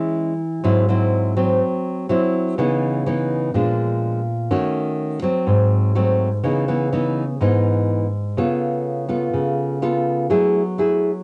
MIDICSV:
0, 0, Header, 1, 2, 480
1, 0, Start_track
1, 0, Key_signature, 4, "minor"
1, 0, Tempo, 483092
1, 641, Time_signature, 4, 2, 24, 8
1, 11162, End_track
2, 0, Start_track
2, 0, Title_t, "Nylon-string guitar"
2, 0, Program_c, 0, 24
2, 0, Note_on_c, 0, 52, 61
2, 0, Note_on_c, 0, 56, 50
2, 0, Note_on_c, 0, 61, 51
2, 0, Note_on_c, 0, 64, 59
2, 324, Note_off_c, 0, 56, 0
2, 327, Note_off_c, 0, 61, 0
2, 327, Note_off_c, 0, 64, 0
2, 617, Note_off_c, 0, 52, 0
2, 632, Note_on_c, 0, 44, 69
2, 637, Note_on_c, 0, 54, 59
2, 640, Note_on_c, 0, 60, 53
2, 645, Note_on_c, 0, 64, 59
2, 840, Note_off_c, 0, 54, 0
2, 842, Note_off_c, 0, 60, 0
2, 844, Note_off_c, 0, 64, 0
2, 880, Note_on_c, 0, 54, 62
2, 887, Note_on_c, 0, 60, 56
2, 893, Note_on_c, 0, 64, 61
2, 1322, Note_off_c, 0, 54, 0
2, 1326, Note_off_c, 0, 60, 0
2, 1328, Note_off_c, 0, 64, 0
2, 1356, Note_on_c, 0, 54, 60
2, 1362, Note_on_c, 0, 60, 59
2, 1573, Note_off_c, 0, 44, 0
2, 2040, Note_off_c, 0, 54, 0
2, 2042, Note_off_c, 0, 60, 0
2, 2079, Note_on_c, 0, 54, 60
2, 2088, Note_on_c, 0, 60, 65
2, 2096, Note_on_c, 0, 64, 66
2, 2542, Note_off_c, 0, 54, 0
2, 2543, Note_off_c, 0, 60, 0
2, 2549, Note_off_c, 0, 64, 0
2, 2563, Note_on_c, 0, 49, 66
2, 2568, Note_on_c, 0, 52, 56
2, 2572, Note_on_c, 0, 59, 61
2, 2578, Note_on_c, 0, 63, 59
2, 3006, Note_off_c, 0, 52, 0
2, 3008, Note_off_c, 0, 59, 0
2, 3011, Note_off_c, 0, 63, 0
2, 3043, Note_on_c, 0, 52, 60
2, 3049, Note_on_c, 0, 59, 53
2, 3054, Note_on_c, 0, 63, 65
2, 3484, Note_off_c, 0, 52, 0
2, 3486, Note_off_c, 0, 59, 0
2, 3489, Note_off_c, 0, 63, 0
2, 3498, Note_off_c, 0, 49, 0
2, 3520, Note_on_c, 0, 46, 63
2, 3520, Note_on_c, 0, 53, 54
2, 3528, Note_on_c, 0, 56, 50
2, 3531, Note_on_c, 0, 62, 55
2, 4164, Note_off_c, 0, 53, 0
2, 4169, Note_off_c, 0, 62, 0
2, 4170, Note_off_c, 0, 56, 0
2, 4456, Note_off_c, 0, 46, 0
2, 4478, Note_on_c, 0, 51, 72
2, 4481, Note_on_c, 0, 61, 61
2, 4482, Note_on_c, 0, 57, 55
2, 4489, Note_on_c, 0, 66, 57
2, 5161, Note_off_c, 0, 61, 0
2, 5162, Note_off_c, 0, 57, 0
2, 5164, Note_off_c, 0, 66, 0
2, 5185, Note_off_c, 0, 51, 0
2, 5189, Note_on_c, 0, 54, 65
2, 5202, Note_on_c, 0, 60, 69
2, 5432, Note_on_c, 0, 44, 64
2, 5875, Note_off_c, 0, 54, 0
2, 5882, Note_off_c, 0, 60, 0
2, 5914, Note_on_c, 0, 54, 54
2, 5917, Note_on_c, 0, 57, 57
2, 5923, Note_on_c, 0, 60, 65
2, 6239, Note_off_c, 0, 54, 0
2, 6240, Note_off_c, 0, 57, 0
2, 6243, Note_off_c, 0, 60, 0
2, 6371, Note_off_c, 0, 44, 0
2, 6394, Note_on_c, 0, 49, 67
2, 6394, Note_on_c, 0, 52, 55
2, 6394, Note_on_c, 0, 59, 50
2, 6401, Note_on_c, 0, 63, 57
2, 6597, Note_off_c, 0, 52, 0
2, 6597, Note_off_c, 0, 59, 0
2, 6601, Note_off_c, 0, 63, 0
2, 6637, Note_on_c, 0, 52, 50
2, 6641, Note_on_c, 0, 59, 49
2, 6646, Note_on_c, 0, 63, 52
2, 6839, Note_off_c, 0, 52, 0
2, 6841, Note_off_c, 0, 59, 0
2, 6844, Note_off_c, 0, 63, 0
2, 6880, Note_on_c, 0, 52, 54
2, 6884, Note_on_c, 0, 59, 50
2, 6890, Note_on_c, 0, 63, 58
2, 7189, Note_off_c, 0, 52, 0
2, 7189, Note_off_c, 0, 59, 0
2, 7193, Note_off_c, 0, 63, 0
2, 7332, Note_off_c, 0, 49, 0
2, 7359, Note_on_c, 0, 44, 60
2, 7362, Note_on_c, 0, 52, 47
2, 7370, Note_on_c, 0, 59, 46
2, 7373, Note_on_c, 0, 63, 56
2, 8004, Note_off_c, 0, 52, 0
2, 8009, Note_off_c, 0, 59, 0
2, 8010, Note_off_c, 0, 63, 0
2, 8295, Note_off_c, 0, 44, 0
2, 8319, Note_on_c, 0, 49, 63
2, 8327, Note_on_c, 0, 59, 49
2, 8328, Note_on_c, 0, 69, 55
2, 8329, Note_on_c, 0, 65, 54
2, 9003, Note_off_c, 0, 65, 0
2, 9004, Note_off_c, 0, 59, 0
2, 9004, Note_off_c, 0, 69, 0
2, 9029, Note_on_c, 0, 59, 48
2, 9034, Note_on_c, 0, 65, 60
2, 9038, Note_on_c, 0, 69, 55
2, 9255, Note_off_c, 0, 49, 0
2, 9275, Note_on_c, 0, 49, 56
2, 9715, Note_off_c, 0, 59, 0
2, 9717, Note_off_c, 0, 65, 0
2, 9719, Note_off_c, 0, 69, 0
2, 9758, Note_on_c, 0, 59, 57
2, 9762, Note_on_c, 0, 65, 56
2, 9766, Note_on_c, 0, 69, 61
2, 10212, Note_off_c, 0, 49, 0
2, 10219, Note_off_c, 0, 59, 0
2, 10221, Note_off_c, 0, 65, 0
2, 10222, Note_off_c, 0, 69, 0
2, 10233, Note_on_c, 0, 54, 69
2, 10237, Note_on_c, 0, 57, 55
2, 10241, Note_on_c, 0, 68, 58
2, 10243, Note_on_c, 0, 64, 45
2, 10546, Note_off_c, 0, 57, 0
2, 10547, Note_off_c, 0, 64, 0
2, 10548, Note_off_c, 0, 68, 0
2, 10713, Note_on_c, 0, 57, 51
2, 10720, Note_on_c, 0, 64, 53
2, 10726, Note_on_c, 0, 68, 53
2, 11024, Note_off_c, 0, 57, 0
2, 11029, Note_off_c, 0, 64, 0
2, 11030, Note_off_c, 0, 68, 0
2, 11162, Note_off_c, 0, 54, 0
2, 11162, End_track
0, 0, End_of_file